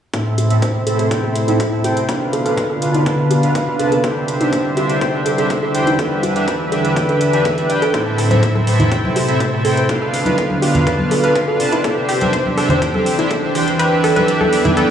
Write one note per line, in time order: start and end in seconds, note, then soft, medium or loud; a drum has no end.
0.14 0.24 A2 medium
0.14 2.07 C3 medium
0.14 2.07 A3 medium
0.14 0.24 C4 medium
0.14 2.07 E4 medium
0.14 0.24 E4 medium
0.14 0.24 A4 medium
0.14 0.21 A4 medium
0.14 2.07 C5 medium
0.14 0.24 E5 medium
0.14 kick loud
0.14 closed hi-hat medium
0.26 0.47 A2 medium
0.26 0.47 C4 medium
0.26 0.47 E4 medium
0.26 0.47 A4 medium
0.26 0.47 E5 medium
0.38 0.49 G4 medium
0.38 closed hi-hat medium
0.50 0.61 A2 medium
0.50 0.61 C4 medium
0.50 0.61 E4 medium
0.50 0.61 A4 medium
0.50 0.61 E5 loud
0.50 closed hi-hat medium
0.62 0.84 A2 medium
0.62 0.84 C4 medium
0.62 0.84 E4 medium
0.62 0.84 A4 medium
0.62 0.67 C5 loud
0.62 0.84 E5 medium
0.62 kick medium
0.62 closed hi-hat medium
0.87 0.97 A2 loud
0.87 0.97 C4 medium
0.87 0.97 E4 medium
0.87 0.94 A4 medium
0.87 0.97 A4 medium
0.87 0.97 E5 loud
0.87 closed hi-hat medium
0.99 1.08 A2 medium
0.99 1.08 C4 medium
0.99 1.08 E4 medium
0.99 1.06 A4 medium
0.99 1.08 A4 medium
0.99 1.08 E5 loud
0.99 closed hi-hat medium
1.11 1.22 A2 medium
1.11 1.22 C4 medium
1.11 1.22 E4 medium
1.11 1.22 A4 medium
1.11 1.22 G5 loud
1.11 kick loud
1.11 closed hi-hat medium
1.24 1.37 A2 medium
1.24 1.37 C4 medium
1.24 1.37 E4 medium
1.24 1.37 A4 medium
1.24 1.31 A4 medium
1.24 1.37 E5 medium
1.35 closed hi-hat medium
1.48 1.62 A2 medium
1.48 1.62 C4 medium
1.48 1.58 E4 medium
1.48 1.62 E4 medium
1.48 1.62 A4 medium
1.48 1.62 E5 loud
1.48 closed hi-hat medium
1.60 1.67 A4 medium
1.60 kick loud
1.60 closed hi-hat medium
1.72 1.83 A2 medium
1.72 1.83 C4 medium
1.72 1.83 E4 medium
1.72 1.83 A4 medium
1.72 1.83 E5 medium
1.84 1.98 C4 medium
1.84 1.98 E4 medium
1.84 1.95 G4 medium
1.84 1.98 A4 medium
1.84 1.98 G5 loud
1.84 closed hi-hat medium
1.97 closed hi-hat medium
2.09 2.19 B2 medium
2.09 4.02 D3 medium
2.09 4.02 B3 medium
2.09 2.19 D4 medium
2.09 4.02 F4 medium
2.09 2.19 F4 medium
2.09 4.02 B4 medium
2.09 2.13 B4 loud
2.09 2.19 B4 medium
2.09 2.19 F5 medium
2.09 kick loud
2.09 closed hi-hat medium
2.21 2.42 B2 medium
2.21 2.42 D4 medium
2.21 2.42 F4 medium
2.21 2.42 B4 medium
2.21 2.42 F5 medium
2.33 2.40 A4 medium
2.33 closed hi-hat medium
2.46 2.56 B2 loud
2.46 2.56 D4 medium
2.46 2.56 F4 medium
2.46 2.53 A4 medium
2.46 2.56 B4 medium
2.46 2.56 F5 loud
2.46 closed hi-hat medium
2.57 2.79 B2 medium
2.57 2.79 D4 medium
2.57 2.79 F4 medium
2.57 2.79 B4 medium
2.57 2.79 F5 medium
2.57 kick loud
2.57 closed hi-hat medium
2.70 2.77 A4 medium
2.82 2.93 B2 medium
2.82 2.93 D4 medium
2.82 2.93 F4 medium
2.82 2.93 B4 medium
2.82 2.93 F5 loud
2.82 closed hi-hat medium
2.94 3.03 B2 medium
2.94 3.03 D4 medium
2.94 3.05 E4 medium
2.94 3.03 F4 medium
2.94 3.03 B4 medium
2.94 3.03 F5 loud
2.94 closed hi-hat medium
3.06 3.17 B2 medium
3.06 3.17 D4 medium
3.06 3.17 F4 medium
3.06 3.14 A4 medium
3.06 3.17 B4 medium
3.06 3.17 A5 loud
3.06 kick loud
3.06 closed hi-hat medium
3.19 3.32 B2 medium
3.19 3.32 D4 medium
3.19 3.32 F4 medium
3.19 3.32 B4 medium
3.19 3.32 F5 loud
3.31 3.42 G4 medium
3.31 closed hi-hat medium
3.43 3.57 B2 medium
3.43 3.57 D4 medium
3.43 3.57 F4 medium
3.43 3.57 B4 medium
3.43 3.57 F5 loud
3.43 closed hi-hat medium
3.55 3.59 B4 loud
3.55 kick loud
3.55 closed hi-hat medium
3.68 3.78 B2 medium
3.68 3.78 D4 medium
3.68 3.78 F4 medium
3.68 3.78 B4 medium
3.68 3.78 F5 medium
3.79 3.94 C3 loud
3.79 3.94 D4 medium
3.79 3.94 F4 medium
3.79 3.87 A4 medium
3.79 3.94 B4 medium
3.79 3.94 A5 loud
3.79 closed hi-hat medium
3.92 3.99 A4 medium
3.92 closed hi-hat medium
4.04 4.14 C3 medium
4.04 7.90 D3 medium
4.04 7.90 G3 medium
4.04 4.14 D4 medium
4.04 5.97 E4 medium
4.04 4.14 G4 medium
4.04 5.97 C5 medium
4.04 4.14 C5 medium
4.04 4.15 E5 medium
4.04 kick loud
4.04 closed hi-hat medium
4.16 4.37 C3 medium
4.16 4.37 D4 medium
4.16 4.37 G4 medium
4.16 4.23 A4 medium
4.16 4.37 C5 medium
4.16 4.37 E5 medium
4.28 closed hi-hat medium
4.41 4.51 C3 medium
4.41 4.51 D4 medium
4.41 4.51 E4 medium
4.41 4.51 G4 medium
4.41 4.51 C5 medium
4.41 4.51 E5 loud
4.41 closed hi-hat soft
4.53 4.74 C3 medium
4.53 4.74 D4 medium
4.53 4.74 G4 medium
4.53 4.60 A4 medium
4.53 4.74 C5 medium
4.53 4.74 E5 medium
4.53 kick loud
4.53 closed hi-hat medium
4.77 4.88 C3 medium
4.77 4.88 D4 medium
4.77 4.88 G4 medium
4.77 4.88 C5 medium
4.77 4.88 E5 loud
4.77 closed hi-hat medium
4.90 4.99 C3 medium
4.90 4.99 D4 medium
4.90 4.99 G4 medium
4.90 4.99 C5 medium
4.90 4.99 E5 loud
4.90 closed hi-hat medium
5.01 5.12 C3 medium
5.01 5.12 D4 medium
5.01 5.12 G4 medium
5.01 5.06 C5 loud
5.01 5.12 G5 loud
5.01 kick loud
5.01 closed hi-hat medium
5.14 5.27 C3 medium
5.14 5.27 D4 medium
5.14 5.28 G4 medium
5.14 5.27 C5 medium
5.14 5.28 E5 medium
5.26 5.33 A4 medium
5.26 closed hi-hat medium
5.38 5.52 C3 medium
5.38 5.52 D4 medium
5.38 5.52 G4 medium
5.38 5.45 A4 medium
5.38 5.52 C5 medium
5.38 5.52 E5 loud
5.38 closed hi-hat soft
5.50 kick loud
5.50 closed hi-hat medium
5.63 5.73 C3 medium
5.63 5.73 D4 medium
5.63 5.73 G4 medium
5.63 5.70 A4 medium
5.63 5.73 C5 medium
5.63 5.73 E5 medium
5.75 5.89 E3 loud
5.75 5.89 D4 medium
5.75 5.89 G4 medium
5.75 5.89 C5 medium
5.75 5.89 G5 loud
5.75 closed hi-hat medium
5.87 5.97 E4 medium
5.87 closed hi-hat soft
5.99 6.10 E3 medium
5.99 6.10 D4 medium
5.99 7.92 E4 medium
5.99 6.10 G4 medium
5.99 6.06 A4 medium
5.99 7.92 B4 medium
5.99 6.10 B4 medium
5.99 6.10 E5 medium
5.99 kick loud
5.99 closed hi-hat medium
6.11 6.32 E3 medium
6.11 6.32 D4 medium
6.11 6.32 G4 medium
6.11 6.32 B4 medium
6.11 6.32 E5 medium
6.23 6.34 G4 medium
6.23 closed hi-hat medium
6.36 6.46 E3 medium
6.36 6.46 D4 medium
6.36 6.46 G4 medium
6.36 6.46 B4 medium
6.36 6.46 E5 loud
6.36 closed hi-hat soft
6.48 6.69 E3 medium
6.48 6.69 D4 medium
6.48 6.69 G4 medium
6.48 6.52 B4 loud
6.48 6.69 B4 medium
6.48 6.69 E5 medium
6.48 kick loud
6.48 closed hi-hat medium
6.72 6.83 E3 medium
6.72 6.83 D4 medium
6.72 6.83 G4 medium
6.72 6.79 A4 medium
6.72 6.83 B4 medium
6.72 6.83 E5 loud
6.72 closed hi-hat medium
6.84 6.94 E3 medium
6.84 6.94 D4 medium
6.84 6.94 G4 medium
6.84 6.92 A4 medium
6.84 6.94 B4 medium
6.84 6.94 E5 loud
6.84 closed hi-hat soft
6.96 7.07 E3 medium
6.96 7.07 D4 medium
6.96 7.07 G4 medium
6.96 7.07 B4 medium
6.96 7.07 G5 loud
6.96 kick loud
6.96 closed hi-hat medium
7.09 7.23 E3 medium
7.09 7.23 D4 medium
7.09 7.23 G4 medium
7.09 7.16 A4 medium
7.09 7.23 B4 medium
7.09 7.23 E5 medium
7.09 closed hi-hat soft
7.21 closed hi-hat medium
7.33 7.47 E3 medium
7.33 7.47 D4 medium
7.33 7.47 G4 medium
7.33 7.47 B4 medium
7.33 7.47 E5 loud
7.33 7.40 A5 medium
7.33 closed hi-hat soft
7.45 7.56 A4 medium
7.45 kick loud
7.45 closed hi-hat medium
7.58 7.68 E3 medium
7.58 7.68 D4 medium
7.58 7.68 G4 medium
7.58 7.68 B4 medium
7.58 7.68 E5 medium
7.58 closed hi-hat soft
7.70 7.84 D4 medium
7.70 7.84 G4 medium
7.70 7.84 B4 medium
7.70 7.81 E5 medium
7.70 7.84 G5 loud
7.70 closed hi-hat medium
7.82 7.89 A4 loud
7.82 closed hi-hat soft
7.94 8.05 A2 medium
7.94 9.87 C3 medium
7.94 9.87 A3 medium
7.94 8.05 C4 medium
7.94 8.05 E4 medium
7.94 9.87 E4 medium
7.94 8.05 A4 medium
7.94 7.98 C5 loud
7.94 9.87 C5 medium
7.94 8.05 E5 medium
7.94 kick loud
7.94 closed hi-hat medium
8.06 8.27 A2 medium
8.06 8.27 C4 medium
8.06 8.27 E4 medium
8.06 8.27 A4 medium
8.06 8.27 E5 medium
8.18 8.26 A4 medium
8.18 open hi-hat loud
8.31 8.41 A2 medium
8.31 8.41 C4 medium
8.31 8.41 E4 medium
8.31 8.41 A4 medium
8.31 8.38 C5 medium
8.31 8.41 E5 loud
8.31 closed hi-hat soft
8.31 high conga medium
8.43 8.64 A2 medium
8.43 8.64 C4 medium
8.43 8.64 E4 medium
8.43 8.64 A4 medium
8.43 8.64 E5 medium
8.43 kick loud
8.43 closed hi-hat medium
8.55 8.62 A4 medium
8.55 high conga medium
8.67 8.78 A2 medium
8.67 8.78 C4 medium
8.67 8.78 E4 medium
8.67 8.78 A4 medium
8.67 8.78 E5 loud
8.67 open hi-hat loud
8.80 8.89 A2 medium
8.80 8.89 C4 medium
8.80 8.89 E4 medium
8.80 8.90 E4 medium
8.80 8.89 A4 medium
8.80 8.89 E5 loud
8.80 closed hi-hat soft
8.80 low conga medium
8.92 9.02 A2 medium
8.92 9.02 C4 medium
8.92 9.02 E4 medium
8.92 9.02 A4 medium
8.92 8.99 A4 medium
8.92 9.02 G5 loud
8.92 kick loud
8.92 closed hi-hat medium
9.04 9.18 A2 medium
9.04 9.18 C4 medium
9.04 9.18 E4 medium
9.04 9.18 A4 medium
9.04 9.18 E5 loud
9.04 high conga medium
9.16 9.27 G4 medium
9.16 open hi-hat loud
9.28 9.42 A2 medium
9.28 9.42 C4 medium
9.28 9.42 E4 medium
9.28 9.42 A4 medium
9.28 9.42 E5 loud
9.28 closed hi-hat soft
9.40 9.45 C5 loud
9.40 kick loud
9.40 closed hi-hat medium
9.53 9.63 A2 medium
9.53 9.63 C4 medium
9.53 9.63 E4 medium
9.53 9.63 A4 medium
9.53 9.63 E5 medium
9.65 9.79 C4 loud
9.65 9.79 E4 medium
9.65 9.79 A4 medium
9.65 9.72 A4 medium
9.65 9.79 G5 loud
9.65 open hi-hat loud
9.77 9.84 C5 medium
9.77 closed hi-hat soft
9.89 10.00 B2 medium
9.89 11.82 D3 medium
9.89 11.82 B3 medium
9.89 10.00 D4 medium
9.89 11.82 F4 medium
9.89 10.00 F4 medium
9.89 10.00 B4 medium
9.89 14.90 D5 medium
9.89 10.00 F5 medium
9.89 kick loud
9.89 closed hi-hat medium
10.02 10.22 B2 medium
10.02 10.22 D4 medium
10.02 10.22 F4 medium
10.02 10.09 A4 medium
10.02 10.22 B4 medium
10.02 10.22 F5 medium
10.14 open hi-hat medium
10.26 10.36 B2 medium
10.26 10.36 D4 medium
10.26 10.37 E4 medium
10.26 10.36 F4 medium
10.26 10.36 B4 medium
10.26 10.36 F5 loud
10.26 closed hi-hat medium
10.26 high conga medium
10.38 10.60 B2 medium
10.38 10.60 D4 medium
10.38 10.60 F4 medium
10.38 10.45 A4 medium
10.38 10.60 B4 medium
10.38 10.60 F5 medium
10.38 kick medium
10.38 closed hi-hat medium
10.50 high conga medium
10.62 10.73 B2 loud
10.62 10.73 D4 medium
10.62 10.73 F4 medium
10.62 10.73 G4 medium
10.62 10.73 B4 medium
10.62 10.73 F5 loud
10.62 open hi-hat loud
10.75 10.84 B2 medium
10.75 10.84 D4 medium
10.75 10.84 F4 medium
10.75 10.84 B4 medium
10.75 10.84 F5 loud
10.75 closed hi-hat medium
10.75 low conga medium
10.87 10.97 B2 medium
10.87 10.97 D4 medium
10.87 10.97 F4 medium
10.87 10.97 B4 medium
10.87 10.91 B4 loud
10.87 10.97 A5 loud
10.87 kick loud
10.87 closed hi-hat medium
10.99 11.13 B2 medium
10.99 11.13 D4 medium
10.99 11.13 F4 medium
10.99 11.13 B4 medium
10.99 11.13 F5 medium
10.99 high conga medium
11.11 11.18 A4 medium
11.11 open hi-hat loud
11.24 11.37 B2 medium
11.24 11.37 D4 medium
11.24 11.37 F4 medium
11.24 11.37 B4 medium
11.24 11.31 B4 medium
11.24 11.37 F5 loud
11.24 closed hi-hat medium
11.36 kick loud
11.36 closed hi-hat medium
11.48 11.58 B2 medium
11.48 11.58 D4 medium
11.48 11.58 F4 medium
11.48 11.55 A4 medium
11.48 11.58 B4 medium
11.48 11.58 F5 medium
11.60 11.74 C3 loud
11.60 11.74 D4 medium
11.60 11.74 F4 medium
11.60 11.74 B4 medium
11.60 11.74 A5 loud
11.60 open hi-hat loud
11.72 11.83 E4 medium
11.72 closed hi-hat medium
11.84 11.95 C3 medium
11.84 14.90 E3 medium
11.84 13.77 C4 medium
11.84 11.95 D4 medium
11.84 11.95 G4 medium
11.84 14.90 G4 medium
11.84 11.92 A4 medium
11.84 11.95 E5 medium
11.84 kick loud
11.84 closed hi-hat medium
11.97 12.17 C3 medium
11.97 12.18 D4 medium
11.97 12.17 G4 medium
11.97 12.17 C5 medium
11.97 12.17 E5 medium
12.09 12.20 G4 medium
12.09 open hi-hat medium
12.21 12.31 C3 medium
12.21 12.31 D4 medium
12.21 12.31 G4 medium
12.21 12.31 C5 medium
12.21 12.31 E5 loud
12.21 closed hi-hat medium
12.21 high conga medium
12.33 12.55 C3 medium
12.33 12.55 D4 medium
12.33 12.55 G4 medium
12.33 12.37 C5 loud
12.33 12.55 E5 medium
12.33 kick medium
12.33 closed hi-hat medium
12.46 high conga medium
12.57 12.68 C3 loud
12.57 12.68 D4 medium
12.57 12.68 G4 medium
12.57 12.65 A4 medium
12.57 12.68 C5 medium
12.57 12.68 E5 loud
12.57 open hi-hat medium
12.69 12.79 C3 medium
12.69 12.79 D4 medium
12.69 12.79 G4 medium
12.69 12.77 C5 medium
12.69 12.79 C5 medium
12.69 12.79 E5 loud
12.69 closed hi-hat medium
12.69 low conga medium
12.82 12.93 C3 medium
12.82 12.93 D4 medium
12.82 12.93 G4 medium
12.82 12.93 C5 medium
12.82 12.93 G5 loud
12.82 kick loud
12.82 closed hi-hat medium
12.94 13.08 C3 medium
12.94 13.08 D4 medium
12.94 13.08 G4 medium
12.94 13.01 A4 medium
12.94 13.08 C5 medium
12.94 13.08 E5 medium
12.94 high conga medium
13.06 open hi-hat loud
13.19 13.32 C3 medium
13.19 13.32 D4 medium
13.19 13.29 E4 medium
13.19 13.32 G4 medium
13.19 13.32 C5 medium
13.19 13.32 E5 loud
13.19 closed hi-hat medium
13.31 13.38 A4 medium
13.31 kick loud
13.31 closed hi-hat medium
13.43 13.53 C3 medium
13.43 13.53 D4 medium
13.43 13.53 G4 medium
13.43 13.53 C5 medium
13.43 13.53 E5 medium
13.55 13.69 E3 loud
13.55 13.69 D4 medium
13.55 13.69 G4 medium
13.55 13.66 G4 medium
13.55 13.69 C5 medium
13.55 13.69 G5 loud
13.55 open hi-hat medium
13.68 closed hi-hat medium
13.79 13.90 E3 medium
13.79 14.90 B3 medium
13.79 13.90 D4 medium
13.79 13.90 G4 medium
13.79 13.90 B4 medium
13.79 13.84 B4 loud
13.79 13.90 E5 medium
13.79 closed hi-hat medium
13.92 14.13 E3 medium
13.92 14.13 D4 medium
13.92 14.13 G4 medium
13.92 14.13 B4 medium
13.92 14.13 E5 medium
14.04 14.11 A4 medium
14.04 open hi-hat medium
14.16 14.26 E3 medium
14.16 14.26 D4 medium
14.16 14.26 G4 medium
14.16 14.26 B4 medium
14.16 14.23 B4 medium
14.16 14.26 E5 loud
14.16 closed hi-hat medium
14.16 high conga medium
14.28 14.50 E3 medium
14.28 14.50 D4 medium
14.28 14.50 G4 medium
14.28 14.50 B4 medium
14.28 14.50 E5 medium
14.28 closed hi-hat medium
14.41 14.48 A4 medium
14.41 high conga medium
14.53 14.63 E3 loud
14.53 14.63 D4 medium
14.53 14.63 G4 medium
14.53 14.63 B4 medium
14.53 14.63 E5 loud
14.53 open hi-hat medium
14.65 14.74 E3 medium
14.65 14.74 D4 medium
14.65 14.76 E4 medium
14.65 14.74 G4 medium
14.65 14.74 B4 medium
14.65 14.74 E5 loud
14.65 closed hi-hat medium
14.65 high conga medium
14.65 low conga medium
14.77 14.88 E3 medium
14.77 14.88 D4 medium
14.77 14.88 G4 medium
14.77 14.84 A4 medium
14.77 14.88 B4 medium
14.77 14.88 G5 loud
14.77 closed hi-hat medium
14.77 swell medium